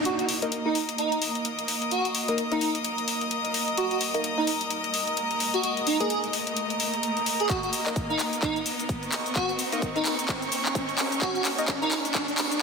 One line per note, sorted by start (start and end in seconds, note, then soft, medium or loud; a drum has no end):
0.00 12.62 A#3 medium
0.05 0.14 F#4 medium
0.05 12.62 A#4 medium
0.05 closed hi-hat medium
0.05 riser medium
0.19 0.25 F#4 medium
0.19 closed hi-hat soft
0.25 12.62 D#5 medium
0.25 open hi-hat loud
0.42 0.56 A#3 medium
0.42 0.56 D#4 medium
0.42 0.56 A#4 medium
0.42 0.56 D#5 loud
0.42 closed hi-hat medium
0.52 closed hi-hat medium
0.57 9.20 D#6 medium
0.66 0.74 A#3 medium
0.66 0.77 D#4 medium
0.66 0.73 D#4 medium
0.66 0.74 A#4 medium
0.66 0.74 D#5 medium
0.75 open hi-hat medium
0.89 closed hi-hat soft
0.98 1.13 D#4 medium
0.98 closed hi-hat medium
1.12 closed hi-hat soft
1.22 open hi-hat loud
1.35 closed hi-hat soft
1.45 closed hi-hat medium
1.59 closed hi-hat soft
1.68 open hi-hat loud
1.82 closed hi-hat soft
1.91 2.06 F#4 medium
1.91 closed hi-hat medium
2.05 closed hi-hat soft
2.15 open hi-hat loud
2.28 2.42 A#3 medium
2.28 2.42 D#4 medium
2.28 2.42 A#4 medium
2.28 2.42 D#5 loud
2.28 closed hi-hat medium
2.38 closed hi-hat medium
2.52 2.60 A#3 medium
2.52 2.60 D#4 medium
2.52 2.58 D#4 medium
2.52 2.60 A#4 medium
2.52 2.60 D#5 medium
2.52 closed hi-hat soft
2.61 2.70 D#4 medium
2.61 open hi-hat loud
2.75 closed hi-hat soft
2.84 closed hi-hat medium
2.98 closed hi-hat soft
3.08 open hi-hat loud
3.21 closed hi-hat soft
3.31 closed hi-hat medium
3.45 closed hi-hat soft
3.54 open hi-hat loud
3.68 closed hi-hat soft
3.77 3.86 F#4 medium
3.77 closed hi-hat medium
3.91 3.97 F#4 medium
3.91 closed hi-hat soft
4.01 open hi-hat loud
4.14 4.28 A#3 medium
4.14 4.28 D#4 medium
4.14 4.28 A#4 medium
4.14 4.28 D#5 loud
4.14 closed hi-hat soft
4.24 closed hi-hat medium
4.38 4.46 A#3 medium
4.38 4.49 D#4 medium
4.38 4.46 D#4 medium
4.38 4.46 A#4 medium
4.38 4.46 D#5 medium
4.47 open hi-hat loud
4.61 closed hi-hat soft
4.70 closed hi-hat medium
4.84 closed hi-hat soft
4.94 open hi-hat loud
5.07 closed hi-hat soft
5.17 closed hi-hat medium
5.31 closed hi-hat soft
5.40 open hi-hat loud
5.54 5.60 F#4 medium
5.54 closed hi-hat soft
5.63 5.72 F#4 medium
5.63 closed hi-hat medium
5.77 closed hi-hat soft
5.87 5.98 D#4 medium
5.87 open hi-hat loud
6.00 6.14 A#3 medium
6.00 6.14 D#4 medium
6.00 6.07 G#4 medium
6.00 6.14 A#4 medium
6.00 6.14 D#5 loud
6.00 closed hi-hat medium
6.10 6.19 G#4 medium
6.10 closed hi-hat medium
6.24 closed hi-hat soft
6.33 open hi-hat loud
6.47 closed hi-hat soft
6.57 closed hi-hat medium
6.70 closed hi-hat soft
6.80 open hi-hat loud
6.94 closed hi-hat soft
7.03 closed hi-hat medium
7.17 closed hi-hat soft
7.26 open hi-hat loud
7.40 7.49 G#4 medium
7.40 closed hi-hat soft
7.49 7.58 F#4 medium
7.49 kick loud
7.49 clap soft
7.49 closed hi-hat medium
7.49 cabasa soft
7.63 7.69 F#4 medium
7.63 closed hi-hat soft
7.63 cabasa soft
7.73 open hi-hat loud
7.73 cabasa medium
7.86 8.01 A#3 medium
7.86 8.01 D#4 medium
7.86 8.01 A#4 medium
7.86 8.01 D#5 loud
7.86 clap soft
7.86 closed hi-hat soft
7.86 cabasa soft
7.96 kick loud
7.96 closed hi-hat medium
7.96 cabasa soft
8.10 8.18 A#3 medium
8.10 8.18 D#4 medium
8.10 8.21 D#4 medium
8.10 8.18 A#4 medium
8.10 8.18 D#5 medium
8.10 cabasa soft
8.19 clap soft
8.19 open hi-hat loud
8.19 cabasa medium
8.33 closed hi-hat soft
8.33 cabasa soft
8.42 8.57 D#4 medium
8.42 kick loud
8.42 clap soft
8.42 closed hi-hat medium
8.42 cabasa soft
8.56 closed hi-hat soft
8.56 cabasa soft
8.66 open hi-hat loud
8.66 cabasa medium
8.79 closed hi-hat soft
8.79 cabasa soft
8.89 kick loud
8.89 closed hi-hat medium
8.89 cabasa soft
9.03 12.62 C#6 medium
9.03 closed hi-hat soft
9.03 cabasa soft
9.12 clap medium
9.12 open hi-hat loud
9.12 cabasa medium
9.26 closed hi-hat soft
9.26 cabasa soft
9.36 9.50 F#4 medium
9.36 kick loud
9.36 clap medium
9.36 closed hi-hat medium
9.36 cabasa soft
9.49 closed hi-hat soft
9.49 cabasa soft
9.59 open hi-hat loud
9.59 cabasa medium
9.72 9.87 A#3 medium
9.72 9.87 D#4 medium
9.72 9.87 A#4 medium
9.72 9.87 D#5 loud
9.72 closed hi-hat medium
9.72 cabasa soft
9.82 kick loud
9.82 closed hi-hat medium
9.82 cabasa soft
9.96 10.04 A#3 medium
9.96 10.04 D#4 medium
9.96 10.02 D#4 medium
9.96 10.04 A#4 medium
9.96 10.04 D#5 medium
9.96 closed hi-hat soft
9.96 cabasa soft
10.05 10.14 D#4 medium
10.05 clap medium
10.05 open hi-hat loud
10.05 cabasa medium
10.19 closed hi-hat medium
10.19 cabasa soft
10.29 kick loud
10.29 clap medium
10.29 closed hi-hat medium
10.29 cabasa soft
10.42 closed hi-hat soft
10.42 cabasa soft
10.52 open hi-hat loud
10.52 cabasa medium
10.65 clap medium
10.65 closed hi-hat soft
10.65 cabasa soft
10.75 kick loud
10.75 closed hi-hat medium
10.75 cabasa soft
10.89 closed hi-hat soft
10.89 cabasa soft
10.98 clap medium
10.98 open hi-hat loud
10.98 cabasa medium
11.12 closed hi-hat soft
11.12 cabasa soft
11.22 11.30 F#4 medium
11.22 kick loud
11.22 clap medium
11.22 closed hi-hat medium
11.22 cabasa soft
11.35 11.41 F#4 medium
11.35 closed hi-hat soft
11.35 cabasa soft
11.45 clap medium
11.45 open hi-hat loud
11.45 cabasa medium
11.58 11.73 A#3 medium
11.58 11.73 D#4 medium
11.58 11.73 A#4 medium
11.58 11.73 D#5 loud
11.58 closed hi-hat medium
11.58 cabasa soft
11.68 kick loud
11.68 clap medium
11.68 closed hi-hat medium
11.68 cabasa soft
11.82 11.90 A#3 medium
11.82 11.90 D#4 medium
11.82 11.93 D#4 medium
11.82 11.90 A#4 medium
11.82 11.90 D#5 medium
11.82 cabasa soft
11.91 clap medium
11.91 open hi-hat loud
11.91 cabasa medium
12.05 closed hi-hat medium
12.05 cabasa soft
12.15 kick loud
12.15 clap medium
12.15 closed hi-hat medium
12.15 cabasa soft
12.28 closed hi-hat soft
12.28 cabasa soft
12.38 clap medium
12.38 open hi-hat loud
12.38 cabasa medium
12.52 closed hi-hat soft
12.52 cabasa soft